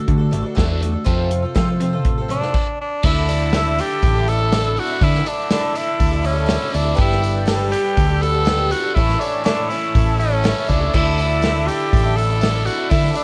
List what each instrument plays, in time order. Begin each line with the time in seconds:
Already playing: twelve-string acoustic guitar D4 F#4 A4
0.08 overdriven electric guitar D3 A3, picked electric bass D3, kick, closed hi-hat
0.18 twelve-string acoustic guitar D4 F#4 A4
0.31 picked electric bass A1, overdriven electric guitar D3, twelve-string acoustic guitar A3 D4 F#4 A4, closed hi-hat
0.43 twelve-string acoustic guitar D4 F#4 A4
0.55 picked electric bass E2, twelve-string acoustic guitar D3 A3 D4 F#4 A4, kick, snare, closed hi-hat
0.80 overdriven electric guitar D3, twelve-string acoustic guitar A3 D4 F#4 A4, closed hi-hat
0.92 twelve-string acoustic guitar D4 F#4 A4
1.04 overdriven electric guitar F2 C3, picked electric bass F2, twelve-string acoustic guitar F3 A3 C4 F4 A4, kick, closed hi-hat
1.31 overdriven electric guitar F2 C3, closed hi-hat
1.42 twelve-string acoustic guitar C4 F4 A4
1.55 overdriven electric guitar F2 C3, twelve-string acoustic guitar F3 A3 C4 F4 A4, picked electric bass F3, kick, snare, closed hi-hat
1.68 twelve-string acoustic guitar C4 F4 A4
1.80 overdriven electric guitar F2 C3, twelve-string acoustic guitar A3 C4 F4 A4, closed hi-hat
1.93 twelve-string acoustic guitar C4 F4 A4
2.04 overdriven electric guitar F2 C3, picked electric bass A2, kick, closed hi-hat
2.18 twelve-string acoustic guitar C4 F4 A4
2.29 overdriven electric guitar F2 C3, twelve-string acoustic guitar A3 C4 F4 A4, tenor saxophone D4, closed hi-hat
2.41 twelve-string acoustic guitar C4 F4 A4, snare
2.54 kick, crash
2.81 tenor saxophone D4
3.03 picked electric bass D2, twelve-string acoustic guitar D3 A3 D4 E4 A4, tenor saxophone E4, accordion A4 E5 D6, kick, crash
3.28 twelve-string acoustic guitar A3 D4 E4 A4, open hi-hat, tambourine
3.52 twelve-string acoustic guitar D3 A3 D4 E4 A4, snare, open hi-hat, tambourine
3.65 tambourine
3.78 twelve-string acoustic guitar A3 D4 E4 A4, tenor saxophone G4, open hi-hat, tambourine
3.91 tambourine
4.02 picked electric bass A1, overdriven electric guitar A4, kick, open hi-hat, tambourine
4.15 twelve-string acoustic guitar D4 E4 A4, tambourine
4.27 twelve-string acoustic guitar A3 D4 E4 A4, tenor saxophone A4, open hi-hat
4.40 twelve-string acoustic guitar D4 E4 A4
4.52 twelve-string acoustic guitar D3 A3 D4 E4 A4, snare, open hi-hat, tambourine
4.76 twelve-string acoustic guitar A3 D4 E4 A4, tenor saxophone F#4, open hi-hat, tambourine
4.89 twelve-string acoustic guitar D4 E4 A4
5.01 twelve-string acoustic guitar D3 A3 D4 E4 A4, picked electric bass D3, tenor saxophone E4, kick, open hi-hat
5.14 snare
5.26 twelve-string acoustic guitar A3 D4 E4 A4, tenor saxophone D4, open hi-hat, tambourine
5.50 twelve-string acoustic guitar D3 A3 D4 E4 A4, tenor saxophone D4, snare, open hi-hat, tambourine
5.73 twelve-string acoustic guitar A3 D4 E4 A4, open hi-hat, tambourine
5.77 tenor saxophone E4
5.88 tambourine
6.00 picked electric bass D2, overdriven electric guitar A4, kick, open hi-hat, tambourine
6.11 twelve-string acoustic guitar D4 E4 A4, tambourine
6.22 twelve-string acoustic guitar A3 D4 E4 A4, open hi-hat, tambourine
6.26 tenor saxophone C#4
6.33 twelve-string acoustic guitar D4 E4 A4
6.46 twelve-string acoustic guitar D3 A3 D4 E4 A4, snare, open hi-hat, tambourine
6.63 tambourine
6.70 twelve-string acoustic guitar A3 D4 E4, open hi-hat
6.74 picked electric bass D2, tenor saxophone D4, twelve-string acoustic guitar A4, tambourine
6.84 twelve-string acoustic guitar D4 E4 A4
6.94 twelve-string acoustic guitar G3 B3 D4 G4 A4, open hi-hat
6.98 picked electric bass G1, overdriven electric guitar G3, tenor saxophone E4, accordion G5 B5, kick
7.11 snare
7.20 twelve-string acoustic guitar B3 D4 G4 A4, open hi-hat, tambourine
7.45 twelve-string acoustic guitar G3 B3 D4 G4 A4, snare, open hi-hat, tambourine
7.70 twelve-string acoustic guitar B3 D4 G4 A4, tenor saxophone G4, open hi-hat, tambourine
7.84 tambourine
7.97 picked electric bass D2, overdriven electric guitar A4, kick, open hi-hat, tambourine
8.07 twelve-string acoustic guitar D4 G4 A4, tambourine
8.20 twelve-string acoustic guitar B3 D4 G4 A4, tenor saxophone A4, open hi-hat, tambourine
8.32 twelve-string acoustic guitar D4 G4 A4
8.45 twelve-string acoustic guitar G3 B3 D4 G4 A4, snare, open hi-hat, tambourine
8.58 tambourine
8.69 twelve-string acoustic guitar B3 D4 G4 A4, tenor saxophone F#4, open hi-hat, tambourine
8.83 twelve-string acoustic guitar D4 G4 A4
8.94 picked electric bass A1, twelve-string acoustic guitar A2 E3 A3 C#4 E4 A4, tenor saxophone E4, accordion C#5 E5 C#6, kick, open hi-hat
9.09 snare, tambourine
9.20 twelve-string acoustic guitar A3 C#4 E4, tenor saxophone D4, open hi-hat, tambourine
9.24 twelve-string acoustic guitar A4
9.34 tambourine
9.43 twelve-string acoustic guitar A2 E3 A3 C#4 E4 A4, tenor saxophone D4, snare, open hi-hat, tambourine
9.69 twelve-string acoustic guitar A3 C#4 E4, tenor saxophone E4, open hi-hat, tambourine
9.73 twelve-string acoustic guitar A4
9.83 tambourine
9.95 picked electric bass A1, overdriven electric guitar A4, kick, open hi-hat, tambourine
10.06 twelve-string acoustic guitar A3 C#4 E4 A4
10.17 twelve-string acoustic guitar A3 C#4 E4 A4, tenor saxophone C#4, open hi-hat
10.29 twelve-string acoustic guitar A3 C#4 E4 A4, tambourine
10.43 twelve-string acoustic guitar A2 E3 A3 C#4 E4 A4, snare, open hi-hat, tambourine
10.68 picked electric bass C#2, twelve-string acoustic guitar A3 C#4 E4 A4, tenor saxophone D4, kick, open hi-hat, tambourine
10.80 twelve-string acoustic guitar A3 C#4 E4 A4
10.93 picked electric bass D2, twelve-string acoustic guitar D3 A3 D4 E4 A4, tenor saxophone E4, accordion D5 D6, kick, crash
11.17 twelve-string acoustic guitar A3 D4 E4 A4, open hi-hat, tambourine
11.41 twelve-string acoustic guitar D3 A3 D4 E4 A4, snare, open hi-hat, tambourine
11.54 tambourine
11.67 twelve-string acoustic guitar A3 D4 E4 A4, tenor saxophone G4, open hi-hat, tambourine
11.80 tambourine
11.93 picked electric bass A1, overdriven electric guitar A4, kick, open hi-hat, tambourine
12.04 twelve-string acoustic guitar D4 E4 A4, tambourine
12.16 twelve-string acoustic guitar A3 D4 E4 A4, tenor saxophone A4, open hi-hat, tambourine
12.30 twelve-string acoustic guitar D4 E4 A4
12.41 twelve-string acoustic guitar D3 A3 D4 E4 A4, snare, open hi-hat, tambourine
12.65 twelve-string acoustic guitar A3 D4 E4 A4, tenor saxophone F#4, open hi-hat, tambourine
12.76 twelve-string acoustic guitar D4 E4 A4
12.90 twelve-string acoustic guitar D3 A3 D4 E4 A4, picked electric bass D3, tenor saxophone E4, kick, open hi-hat
13.04 snare
13.12 twelve-string acoustic guitar A3 D4 E4 A4, open hi-hat, tambourine
13.17 tenor saxophone D4